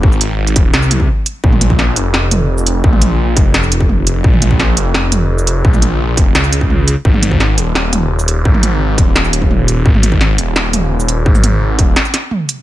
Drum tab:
HH |--x--xx---x---x-|--x---x---x---x-|--x---x---x---x-|--x---x---x---x-|
SH |-x-------x----x-|----------x--x--|---------x----x-|----------x--x--|
SD |--------o-------|----o---o-------|--------o-------|----o---o-------|
T2 |----------o-----|-oo-------o-----|-oo---------o---|-oo-------o-----|
BD |o-----o----o----|o--o------------|o-----o----o----|o--o------------|

HH |--x---x---x---x-|--x---x---x---x-|--x---x---x---x-|--x---x---x---x-|
SH |-x-------x----x-|----------x--x--|---------x----x-|----------x--x--|
SD |--------o-------|----o---o-------|--------o-------|----o---o-------|
T2 |-oo---------o---|-oo-------o-----|-oo---------o---|-oo-------o-----|
BD |o-----o----o----|o--o------------|o-----o----o----|o--o------------|

HH |--x---x---x---x-|
SH |-x-------x----x-|
SD |--------o-o-----|
T2 |-oo---------o---|
BD |o-----o---------|